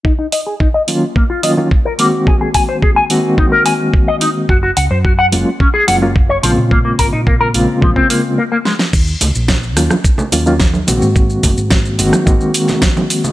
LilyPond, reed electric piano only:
\new Staff \with { instrumentName = "Reed electric piano" } { \time 4/4 \key ees \dorian \tempo 4 = 108 r4. <ees ges bes des' f'>16 r8. <ees ges bes des' f'>16 <ees ges bes des' f'>16 r8 <ees aes bes c' ges'>8~ | <ees aes bes c' ges'>4. <ees aes bes c' ges'>8 <aes bes c'>2 | r4. <ges aes bes des' f'>16 r8. <ges aes bes des' f'>16 <ges aes bes des' f'>16 r8 <des aes bes c' f'>8~ | <des aes bes c' f'>4. <des aes bes c' f'>8 <des aes bes c' f'>4 r4 |
r4. <ees ges bes des' f'>16 r8. <ees ges bes des' f'>16 <ees ges bes des' f'>16 r8 <ees aes bes c' ges'>8~ | <ees aes bes c' ges'>4. <ees aes bes c' ges'>8 <ees aes bes c' ges'>2 | }